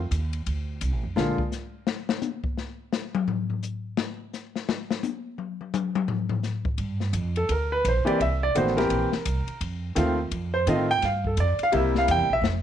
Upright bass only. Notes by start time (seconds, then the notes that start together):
0.11 D#2
0.46 D2
0.81 C2
0.92 A1
1.03 F1
1.16 A#1
6.78 G2
7.13 F2
7.49 D2
7.85 A#1
8.05 muted upright bass stroke
8.20 C2
8.55 A1
8.90 A#1
9.12 muted upright bass stroke
9.26 C2
9.47 muted upright bass stroke
9.61 F2
9.96 D#2
10.31 F2
10.67 A2
11.02 G2
11.37 F2
11.59 muted upright bass stroke
11.73 C2
12.08 E2
12.19 C2
12.30 A#1
12.42 F1